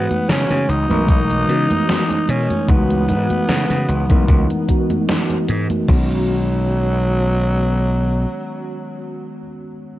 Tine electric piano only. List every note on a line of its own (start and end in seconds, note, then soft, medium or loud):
0.00 0.84 E3 medium
0.00 0.85 G#3 medium
0.00 0.85 B3 medium
0.00 0.85 D#4 medium
0.00 0.86 F#4 medium
0.89 1.44 E3 medium
0.89 1.44 G#3 medium
0.89 1.44 B3 medium
0.89 1.44 D#4 medium
0.89 1.44 A#4 loud
1.47 2.63 E3 medium
1.47 2.64 G#3 medium
1.47 2.64 B3 medium
1.47 2.64 D#4 medium
1.47 2.65 F#4 medium
2.67 4.04 E3 medium
2.67 4.04 G#3 medium
2.67 4.05 B3 medium
2.67 4.05 D#4 medium
2.67 4.05 F#4 loud
4.09 4.64 E3 medium
4.09 4.64 G#3 medium
4.09 4.64 B3 medium
4.09 4.64 D#4 medium
4.09 4.64 A#4 loud
4.67 5.83 E3 medium
4.67 5.84 G#3 medium
4.67 5.84 B3 medium
4.67 5.84 D#4 medium
4.67 5.85 F#4 medium
5.86 9.39 D#3 medium
5.86 9.40 G#3 medium
5.86 9.41 B3 medium
5.86 9.43 C#4 medium
5.91 9.44 F#4 loud